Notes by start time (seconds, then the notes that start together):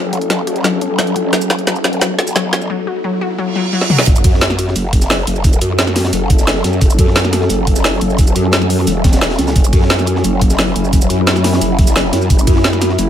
Already playing: F#1 F#3 C#4 A4, riser
0.13 F#3, closed hi-hat
0.21 closed hi-hat
0.30 F#3, snare, closed hi-hat
0.47 F#4, closed hi-hat
0.56 F1, closed hi-hat
0.64 F#3, snare, closed hi-hat
0.81 G1 C#4, closed hi-hat
0.99 F#3, snare, closed hi-hat
1.07 closed hi-hat
1.16 F#3, closed hi-hat
1.33 F#1 F#3, snare, closed hi-hat, shaker
1.41 shaker
1.50 F#4, snare, closed hi-hat, shaker
1.59 closed hi-hat
1.67 F#3, snare, closed hi-hat, shaker
1.76 shaker
1.84 C#4, snare, closed hi-hat, shaker
1.93 closed hi-hat
2.01 F#3, snare, closed hi-hat, shaker
2.18 G1 F#4, snare, closed hi-hat
2.27 shaker
2.36 F#3, snare, closed hi-hat, shaker
2.53 C#4, snare, closed hi-hat
2.61 shaker
2.70 F#3
2.87 F#4
3.04 F#3
3.21 F#4
3.38 F#3, reverse cymbal
3.56 F#3
3.73 F#3
3.81 snare
3.90 F#3, mid tom
3.99 snare
4.06 F#1 F#3 C#4 A4, kick, closed hi-hat, sub drop, shaker
4.16 shaker
4.24 F#2, kick, closed hi-hat, open hi-hat, shaker
4.34 snare
4.41 snare, closed hi-hat, shaker
4.50 snare, shaker
4.59 closed hi-hat, shaker
4.68 snare
4.76 F#1, closed hi-hat, shaker
4.93 kick, closed hi-hat
5.01 snare, shaker
5.10 snare, closed hi-hat, shaker
5.18 closed hi-hat
5.27 F#1, closed hi-hat
5.36 shaker
5.44 kick, closed hi-hat, shaker
5.53 shaker
5.61 F#2, closed hi-hat, shaker
5.78 snare, closed hi-hat, shaker
5.87 snare, shaker
5.96 snare, closed hi-hat, open hi-hat, shaker
6.04 snare, closed hi-hat
6.13 F#1, closed hi-hat, shaker
6.30 kick, closed hi-hat
6.39 snare, shaker
6.47 snare, closed hi-hat, shaker
6.55 snare
6.64 F#2, snare, closed hi-hat
6.73 shaker
6.81 F#1, kick, closed hi-hat, shaker
6.90 shaker
6.98 F#2, kick, closed hi-hat, open hi-hat, shaker
7.07 snare
7.16 snare, closed hi-hat, shaker
7.24 snare, shaker
7.33 snare, closed hi-hat, shaker
7.41 snare
7.49 F#1, closed hi-hat, shaker
7.67 kick, closed hi-hat
7.76 snare, shaker
7.84 snare, closed hi-hat, shaker
7.93 closed hi-hat
8.01 F#1, closed hi-hat
8.10 shaker
8.19 kick, closed hi-hat, shaker
8.27 shaker
8.35 F#2, closed hi-hat, shaker
8.52 snare, closed hi-hat, shaker
8.61 snare, shaker
8.70 closed hi-hat, open hi-hat, shaker
8.78 snare
8.87 E1, closed hi-hat, shaker
9.04 kick, snare, closed hi-hat
9.13 snare, closed hi-hat, shaker
9.21 snare, closed hi-hat, shaker
9.30 snare, closed hi-hat
9.38 C#2, snare, closed hi-hat
9.47 snare, closed hi-hat, shaker
9.56 F#1 E4, kick, closed hi-hat, shaker
9.64 shaker
9.73 F#2, kick, closed hi-hat, open hi-hat, shaker
9.82 snare
9.90 snare, closed hi-hat, shaker
9.99 snare, shaker
10.06 closed hi-hat, shaker
10.15 snare
10.24 F#1, closed hi-hat, shaker
10.41 kick, closed hi-hat
10.50 snare, shaker
10.58 snare, closed hi-hat, shaker
10.67 closed hi-hat
10.75 F#1, closed hi-hat
10.84 shaker
10.93 kick, closed hi-hat, shaker
11.01 shaker
11.10 F#2, closed hi-hat, shaker
11.27 snare, closed hi-hat, shaker
11.36 snare, shaker
11.44 snare, closed hi-hat, open hi-hat, shaker
11.53 snare, closed hi-hat
11.61 F#1, closed hi-hat, shaker
11.79 kick, closed hi-hat
11.87 snare, shaker
11.96 snare, closed hi-hat, shaker
12.04 snare
12.12 F#2, snare, closed hi-hat
12.22 shaker
12.30 F#1, kick, closed hi-hat, shaker
12.39 shaker
12.47 F#2, kick, closed hi-hat, open hi-hat, shaker
12.56 snare
12.64 snare, closed hi-hat, shaker
12.73 snare, shaker
12.82 snare, closed hi-hat, shaker
12.89 snare
12.98 F#1, closed hi-hat, shaker